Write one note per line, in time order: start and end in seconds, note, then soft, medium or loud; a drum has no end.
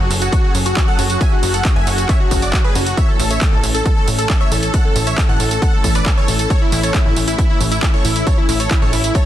0.00 2.93 F#3 medium
0.00 9.26 C#4 medium
0.00 2.93 G#4 medium
0.00 2.93 A4 medium
0.10 0.29 F#1 loud
0.10 open hi-hat loud
0.10 tambourine medium
0.21 0.31 F#4 medium
0.21 closed hi-hat medium
0.21 tambourine soft
0.32 0.42 F#4 medium
0.32 kick loud
0.32 closed hi-hat medium
0.32 tambourine soft
0.44 0.53 F#4 medium
0.55 0.73 F#1 medium
0.55 open hi-hat loud
0.55 tambourine medium
0.66 0.75 F#4 medium
0.66 0.76 F#4 medium
0.66 closed hi-hat medium
0.66 tambourine soft
0.76 0.86 F#4 medium
0.76 0.87 F#4 medium
0.76 kick loud
0.76 clap loud
0.76 closed hi-hat medium
0.76 tambourine soft
0.87 0.98 A4 medium
0.87 0.97 F#5 loud
0.87 0.98 F#5 loud
0.99 1.17 F#1 medium
0.99 1.09 F#4 medium
0.99 open hi-hat loud
0.99 tambourine medium
1.10 1.20 F#4 medium
1.10 closed hi-hat medium
1.10 tambourine soft
1.21 1.31 E5 medium
1.21 1.31 G#5 medium
1.21 1.31 G#5 loud
1.21 kick loud
1.21 closed hi-hat medium
1.21 tambourine soft
1.32 1.42 F#4 medium
1.43 1.61 F#1 loud
1.43 1.53 F#4 medium
1.43 open hi-hat loud
1.43 tambourine medium
1.54 1.64 A4 medium
1.54 1.64 F#5 medium
1.54 closed hi-hat medium
1.54 tambourine soft
1.65 1.75 F#4 medium
1.65 kick loud
1.65 clap loud
1.65 closed hi-hat medium
1.65 tambourine soft
1.76 1.85 F#1 medium
1.76 1.86 E5 medium
1.76 1.86 G#5 loud
1.76 1.86 G#5 medium
1.87 2.05 F#1 loud
1.87 1.97 F#4 medium
1.87 open hi-hat loud
1.87 tambourine medium
1.98 2.08 F#4 medium
1.98 closed hi-hat medium
1.98 tambourine soft
2.09 2.19 C#5 medium
2.09 2.19 E5 medium
2.09 kick loud
2.09 clap soft
2.09 closed hi-hat medium
2.09 tambourine soft
2.20 2.30 F#4 medium
2.31 2.49 F#1 loud
2.31 2.41 F#4 medium
2.31 kick medium
2.31 open hi-hat loud
2.31 tambourine medium
2.42 2.52 F#4 medium
2.42 2.52 D5 medium
2.42 closed hi-hat medium
2.42 tambourine soft
2.53 2.63 F#4 medium
2.53 kick loud
2.53 clap loud
2.53 closed hi-hat medium
2.53 tambourine soft
2.64 2.74 G#4 medium
2.64 2.74 B4 medium
2.64 2.74 B4 loud
2.75 2.93 F#1 medium
2.75 2.85 F#4 medium
2.75 open hi-hat loud
2.75 tambourine medium
2.86 2.96 F#4 medium
2.86 closed hi-hat medium
2.86 tambourine soft
2.97 9.26 E3 medium
2.97 9.26 A3 medium
2.97 3.07 C#5 medium
2.97 3.07 E5 loud
2.97 kick loud
2.97 closed hi-hat medium
2.97 tambourine soft
3.08 3.18 A4 medium
3.19 3.37 A1 loud
3.19 3.29 A4 medium
3.19 open hi-hat loud
3.19 tambourine medium
3.30 3.40 C#5 medium
3.30 3.40 E5 medium
3.30 closed hi-hat medium
3.30 tambourine soft
3.41 3.51 A4 medium
3.41 kick loud
3.41 clap loud
3.41 closed hi-hat medium
3.41 tambourine soft
3.52 3.61 A1 medium
3.52 3.62 A4 medium
3.63 3.81 A1 loud
3.63 open hi-hat loud
3.63 tambourine medium
3.74 3.84 A4 medium
3.74 closed hi-hat medium
3.74 tambourine soft
3.85 3.95 A4 medium
3.85 kick loud
3.85 closed hi-hat medium
3.85 tambourine soft
3.96 4.06 A4 medium
4.07 4.26 A1 medium
4.07 open hi-hat loud
4.07 tambourine medium
4.18 4.28 A4 medium
4.18 4.29 A4 medium
4.18 closed hi-hat medium
4.18 tambourine soft
4.30 4.39 A4 medium
4.30 kick loud
4.30 clap loud
4.30 closed hi-hat medium
4.30 tambourine soft
4.41 4.50 C#5 medium
4.41 4.50 E5 loud
4.41 4.50 E5 medium
4.51 4.70 A1 medium
4.51 4.61 A4 medium
4.51 4.62 A4 medium
4.51 open hi-hat loud
4.51 tambourine medium
4.63 4.72 A4 medium
4.63 closed hi-hat medium
4.63 tambourine soft
4.74 4.83 A4 medium
4.74 4.83 F#5 loud
4.74 4.84 F#5 medium
4.74 kick loud
4.74 closed hi-hat medium
4.74 tambourine soft
4.84 4.94 A4 medium
4.84 4.95 A4 medium
4.96 5.14 A1 loud
4.96 5.06 A4 medium
4.96 open hi-hat loud
4.96 tambourine medium
5.07 5.17 C#5 medium
5.07 5.17 E5 medium
5.07 closed hi-hat medium
5.07 tambourine soft
5.18 5.28 A4 medium
5.18 kick loud
5.18 clap loud
5.18 closed hi-hat medium
5.18 tambourine soft
5.29 5.38 A1 medium
5.29 5.39 A4 medium
5.29 5.39 F#5 loud
5.29 5.39 F#5 medium
5.40 5.58 A1 medium
5.40 5.50 A4 medium
5.40 open hi-hat loud
5.40 tambourine medium
5.51 5.61 A4 medium
5.51 closed hi-hat medium
5.51 tambourine soft
5.62 5.72 A4 medium
5.62 5.72 F#5 medium
5.62 5.72 F#5 loud
5.62 kick loud
5.62 closed hi-hat medium
5.62 tambourine soft
5.73 5.83 A4 medium
5.84 6.02 A1 medium
5.84 5.94 A4 medium
5.84 kick medium
5.84 open hi-hat loud
5.84 tambourine medium
5.95 6.05 B4 medium
5.95 6.05 D5 medium
5.95 closed hi-hat medium
5.95 tambourine soft
6.06 6.16 A4 medium
6.06 kick loud
6.06 clap loud
6.06 closed hi-hat medium
6.06 tambourine soft
6.17 6.27 A4 medium
6.17 6.27 C#5 medium
6.17 6.27 C#5 loud
6.28 6.46 A1 medium
6.28 6.38 A4 medium
6.28 open hi-hat loud
6.28 tambourine medium
6.39 6.49 A4 medium
6.39 closed hi-hat medium
6.39 tambourine soft
6.50 6.60 A4 medium
6.50 6.60 C#5 loud
6.50 kick loud
6.50 closed hi-hat medium
6.50 tambourine soft
6.62 6.71 E4 medium
6.72 6.90 A1 loud
6.72 6.82 E4 medium
6.72 open hi-hat loud
6.72 tambourine medium
6.83 6.93 A4 medium
6.83 6.93 C#5 medium
6.83 closed hi-hat medium
6.83 tambourine soft
6.94 7.04 E4 medium
6.94 kick loud
6.94 clap loud
6.94 closed hi-hat medium
6.94 tambourine soft
7.05 7.14 A1 medium
7.05 7.15 E4 medium
7.16 7.34 A1 medium
7.16 open hi-hat loud
7.16 tambourine medium
7.27 7.37 E4 medium
7.27 closed hi-hat medium
7.27 tambourine soft
7.38 7.48 E4 medium
7.38 kick loud
7.38 closed hi-hat medium
7.38 tambourine soft
7.49 7.59 E4 medium
7.61 7.79 A1 medium
7.61 open hi-hat loud
7.61 tambourine medium
7.71 7.81 E4 medium
7.71 closed hi-hat medium
7.71 tambourine soft
7.83 7.92 E4 medium
7.83 kick loud
7.83 clap loud
7.83 closed hi-hat medium
7.83 tambourine soft
7.94 8.03 A4 medium
7.94 8.03 C#5 medium
7.94 8.03 C#5 loud
8.05 8.23 A1 medium
8.05 8.14 E4 medium
8.05 8.15 E4 medium
8.05 open hi-hat loud
8.05 tambourine medium
8.16 8.25 E4 medium
8.16 8.26 E4 medium
8.16 closed hi-hat medium
8.16 tambourine soft
8.27 8.36 A4 medium
8.27 8.36 C#5 loud
8.27 8.37 C#5 medium
8.27 kick loud
8.27 closed hi-hat medium
8.27 tambourine soft
8.38 8.47 E4 medium
8.38 8.48 E4 medium
8.49 8.67 A1 loud
8.49 8.59 E4 medium
8.49 open hi-hat loud
8.49 tambourine medium
8.60 8.70 A4 medium
8.60 8.70 C#5 medium
8.60 closed hi-hat medium
8.60 tambourine soft
8.71 8.81 E4 medium
8.71 kick loud
8.71 clap loud
8.71 closed hi-hat medium
8.71 tambourine soft
8.82 8.91 A1 medium
8.82 8.92 A4 medium
8.82 8.92 C#5 loud
8.82 8.92 C#5 medium
8.93 9.11 A1 medium
8.93 9.03 E4 medium
8.93 open hi-hat loud
8.93 tambourine medium
9.04 9.14 E4 medium
9.04 closed hi-hat medium
9.04 tambourine soft
9.15 9.25 A4 medium
9.15 9.25 C#5 loud
9.15 kick loud
9.15 closed hi-hat medium
9.15 tambourine soft